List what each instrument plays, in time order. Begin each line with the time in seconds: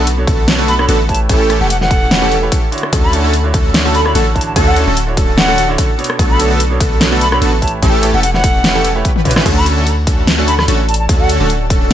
Already playing: 808-style bass B1
0.07 closed hi-hat
0.17 grand piano B2 B3 D4 A4 C#5
0.27 supersaw synth D3 A3 B3 F#4 A4, digital synth lead A4, kick, closed hi-hat
0.47 grand piano B2 B3 D4 A4 C#5, snare, closed hi-hat
0.59 supersaw synth D3 A3 B3 F#4 A4, digital synth lead A4
0.68 flute B5, closed hi-hat
0.78 grand piano B2 B3 D4 A4 C#5, flute B5, cross-stick
0.89 808-style bass A1, supersaw synth D3 A3 B3 F#4 A4, digital synth lead A4, closed hi-hat
1.08 grand piano A3 E4 G4 B4 C#5, flute A5, kick, closed hi-hat
1.15 closed hi-hat
1.29 808-style bass A1, supersaw synth E3 A3 C#4 G4 A4, digital synth lead A4, kick, closed hi-hat
1.49 grand piano A3 E4 G4 B4 C#5, cross-stick, closed hi-hat
1.61 808-style bass E1, supersaw synth E3 A3 C#4 G4 A4, digital synth lead A4, flute F#5
1.70 flute F#5, closed hi-hat
1.80 grand piano A3 E4 G4 B4 C#5, flute F#5, snare
1.91 supersaw synth E3 A3 C#4 G4 A4, digital synth lead A4, kick, closed hi-hat
2.10 grand piano A3 E4 G4 B4 C#5, snare, closed hi-hat
2.22 supersaw synth E3 A3 C#4 G4 A4, digital synth lead A4
2.32 closed hi-hat
2.41 grand piano A3 E4 G4 B4 C#5
2.52 supersaw synth E3 A3 C#4 G4 A4, digital synth lead A4, kick, closed hi-hat
2.71 grand piano D3 D4 E4 F#4 C#5, closed hi-hat
2.78 closed hi-hat
2.83 cross-stick
2.93 808-style bass D2, supersaw synth D3 A3 C#4 F#4 A4, digital synth lead A4, kick, closed hi-hat
3.04 flute B5
3.12 grand piano D3 D4 E4 F#4 C#5, closed hi-hat
3.24 supersaw synth D3 A3 C#4 F#4 A4, digital synth lead A4
3.34 closed hi-hat
3.43 grand piano D3 D4 E4 F#4 C#5
3.54 supersaw synth D3 A3 C#4 F#4 A4, digital synth lead A4, kick, closed hi-hat
3.73 grand piano D3 D4 E4 F#4 C#5, snare, closed hi-hat
3.85 supersaw synth D3 A3 C#4 F#4 A4, digital synth lead A4
3.95 flute B5, closed hi-hat
4.05 grand piano D3 D4 E4 F#4 C#5, flute B5, cross-stick
4.15 808-style bass A1, supersaw synth D3 A3 C#4 F#4 A4, digital synth lead A4, closed hi-hat
4.34 grand piano D3 D4 E4 F#4 C#5, flute A5, kick, closed hi-hat
4.41 closed hi-hat
4.46 flute A5
4.56 808-style bass D2, supersaw synth D3 A3 C#4 F#4 A4, digital synth lead A4, kick, closed hi-hat
4.67 flute F#5
4.75 grand piano D3 D4 E4 F#4 C#5, closed hi-hat
4.87 808-style bass D1, supersaw synth D3 A3 C#4 F#4 A4, digital synth lead A4
4.97 closed hi-hat
5.07 grand piano D3 D4 E4 F#4 C#5
5.17 supersaw synth D3 A3 C#4 F#4 A4, digital synth lead A4, kick, closed hi-hat
5.37 grand piano D3 D4 E4 F#4 C#5, flute F#5, snare, closed hi-hat
5.48 supersaw synth D3 A3 C#4 F#4 A4, digital synth lead A4
5.58 closed hi-hat
5.68 grand piano D3 D4 E4 F#4 C#5
5.78 supersaw synth D3 A3 C#4 F#4 A4, digital synth lead A4, kick, closed hi-hat
5.98 grand piano B2 B3 D4 A4 C#5, closed hi-hat
6.04 closed hi-hat
6.10 cross-stick
6.19 808-style bass B1, supersaw synth D3 A3 B3 F#4 A4, digital synth lead A4, kick, closed hi-hat
6.30 flute B5
6.39 grand piano B2 B3 D4 A4 C#5, closed hi-hat
6.51 supersaw synth D3 A3 B3 F#4 A4, digital synth lead A4
6.60 closed hi-hat
6.70 grand piano B2 B3 D4 A4 C#5
6.80 supersaw synth D3 A3 B3 F#4 A4, digital synth lead A4, kick, closed hi-hat
7.00 grand piano B2 B3 D4 A4 C#5, snare, closed hi-hat
7.12 supersaw synth D3 A3 B3 F#4 A4, digital synth lead A4
7.21 flute B5, closed hi-hat
7.31 grand piano B2 B3 D4 A4 C#5, flute B5, cross-stick
7.42 808-style bass A1, supersaw synth D3 A3 B3 F#4 A4, digital synth lead A4, closed hi-hat
7.61 grand piano A3 E4 G4 B4 C#5, flute A5, kick, closed hi-hat
7.68 closed hi-hat
7.82 808-style bass A1, supersaw synth E3 A3 C#4 G4 A4, digital synth lead A4, kick, closed hi-hat
8.02 grand piano A3 E4 G4 B4 C#5, closed hi-hat
8.14 808-style bass E1, supersaw synth E3 A3 C#4 G4 A4, digital synth lead A4, flute F#5
8.23 flute F#5, closed hi-hat
8.33 grand piano A3 E4 G4 B4 C#5, flute F#5, snare
8.44 supersaw synth E3 A3 C#4 G4 A4, digital synth lead A4, kick, closed hi-hat
8.63 grand piano A3 E4 G4 B4 C#5, snare, closed hi-hat
8.75 supersaw synth E3 A3 C#4 G4 A4, digital synth lead A4
8.85 closed hi-hat
8.94 grand piano A3 E4 G4 B4 C#5
9.05 supersaw synth E3 A3 C#4 G4 B4, digital synth lead B4, kick, closed hi-hat
9.16 high tom
9.24 grand piano D3 D4 E4 F#4 C#5, kick, closed hi-hat, mid tom
9.31 closed hi-hat
9.36 cross-stick, snare
9.46 808-style bass D2, supersaw synth D3 A3 C#4 F#4 A4, ambient pad F#4 C#5 D5 A5, digital synth lead A4, kick, closed hi-hat, crash
9.57 flute B5
9.66 closed hi-hat
9.77 supersaw synth D3 A3 C#4 F#4 A4, digital synth lead A4
9.87 closed hi-hat
10.07 supersaw synth D3 A3 C#4 F#4 A4, digital synth lead A4, kick, closed hi-hat
10.27 snare, closed hi-hat
10.38 supersaw synth D3 A3 C#4 F#4 A4, digital synth lead A4
10.48 flute B5, closed hi-hat
10.59 flute B5, cross-stick, snare
10.68 808-style bass A1, supersaw synth D3 A3 C#4 F#4 A4, digital synth lead A4, closed hi-hat
10.89 flute A5, closed hi-hat
10.94 closed hi-hat
10.99 flute A5
11.09 808-style bass D2, supersaw synth D3 A3 C#4 F#4 A4, digital synth lead A4, kick, closed hi-hat
11.20 flute F#5
11.29 closed hi-hat
11.40 808-style bass D1, supersaw synth D3 A3 C#4 F#4 A4, digital synth lead A4
11.50 closed hi-hat
11.70 supersaw synth D3 A3 C#4 F#4 A4, digital synth lead A4, kick, closed hi-hat